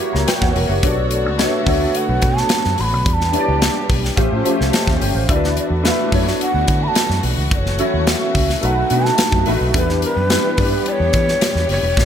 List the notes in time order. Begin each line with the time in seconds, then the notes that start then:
Already playing: E3 G3 A#3 E4 F#4 G4 C#5
0.00 closed hi-hat
0.13 C#2 E5 A#5, snare
0.27 C#5 G5, snare, closed hi-hat
0.40 E2 C#5 F#5, kick, snare
0.55 E1 A#4 E5, open hi-hat
0.69 F#1 G4 C#5
0.82 B1 D3 A3 B3 D4 F#4 A4 C#5 D5, kick, closed hi-hat
1.11 D5, closed hi-hat
1.26 C#2
1.37 B3 D4 F#4 A4 C#5 E5, snare, closed hi-hat
1.65 D2 B3 D4 F#4 A4 C#5, kick, open hi-hat
1.95 F#5, closed hi-hat
2.09 B1
2.22 B2, kick, closed hi-hat
2.37 A5, snare
2.49 snare, closed hi-hat
2.64 F#2, snare
2.78 A1 C6, open hi-hat
2.84 B5
2.93 B1
3.06 E2 E3 G3 D4 G4 B5, kick, closed hi-hat
3.14 A5
3.21 snare
3.32 B3 D4 E4 G4 C#5, closed hi-hat
3.39 D5
3.48 C#2
3.62 snare, closed hi-hat
3.89 B1, kick, open hi-hat
4.05 snare
4.16 A1 F3 A3 C#4 F4 G4 C5, kick, closed hi-hat
4.32 A2
4.43 A3 C#4 F4 G4 C5, closed hi-hat
4.61 C2, snare
4.73 D#5 A5, snare, closed hi-hat
4.87 D#2, kick, snare
5.01 G1 C#5 G5, open hi-hat
5.14 A1 C5 F5
5.28 D2 E3 A3 B3 D4 E4 F#4 A4 D5, kick, closed hi-hat
5.35 B4
5.44 snare
5.57 D5, closed hi-hat
5.70 E2
5.82 A3 D4 E4 F#4 B4 F5, snare, closed hi-hat
5.91 E5
6.11 F#2 A3 D4 E4 F#4 C#5, kick, open hi-hat
6.28 snare
6.41 F#5, closed hi-hat
6.54 D2
6.68 D3, kick, closed hi-hat
6.83 B5
6.88 A5
6.95 snare, closed hi-hat
7.10 F#2, snare
7.23 B1, open hi-hat
7.37 C#2
7.51 F#1 F#3 C#4 D5, kick, closed hi-hat
7.59 C#5
7.66 snare
7.78 A3 C#4 E4 F#4 C#5, closed hi-hat
7.94 D#2
8.07 E5, snare, closed hi-hat
8.35 C#2, kick, open hi-hat
8.50 snare
8.61 B1 D#3 F#3 A3 B3 D#4 F#4 B4 F#5, closed hi-hat
8.90 B2 A3 B3 D4 F#4 B4, closed hi-hat
8.96 D#4
9.05 A5, snare
9.18 snare, closed hi-hat
9.32 F#2, kick
9.46 A1 A3 B3 D#4 F#4 B4, open hi-hat
9.61 B1
9.73 E2 E3 G3 B3 D4 E4 G4 A4 B4, kick, closed hi-hat
9.81 B4
9.89 snare
10.02 A#4, closed hi-hat
10.16 F#2 B4
10.29 G3 B3 D4 E4 B4, snare, closed hi-hat
10.57 G2 G3 B3 D4 E4 B4, kick, open hi-hat
10.86 D5, closed hi-hat
10.92 C#5
11.00 E2
11.13 E3, kick, closed hi-hat
11.28 snare
11.41 snare, closed hi-hat
11.55 E2, snare
11.69 F#1 C#5, open hi-hat
11.83 E1
11.97 A1 A#3 C#4 A4, kick, snare